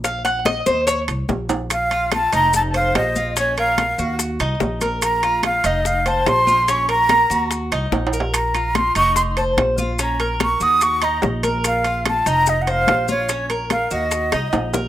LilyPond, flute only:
\new Staff \with { instrumentName = "Flute" } { \time 4/4 \key bes \minor \tempo 4 = 145 r1 | f''4 a''8 bes''8 a''8 f''8 ees''4 | des''8 f''4. r2 | bes''4 f''8 ees''8 f''8 a''8 c'''4 |
des'''8 bes''4. r2 | bes''4 c'''8 des'''8 c'''8 a''8 r4 | bes''4 des'''8 ees'''8 des'''8 bes''8 r4 | f''4 a''8 bes''8 \tuplet 3/2 { ees''8 ges''16 f''8.~ } f''8 des''8~ |
des''8 r8 f''8 ees''2 r8 | }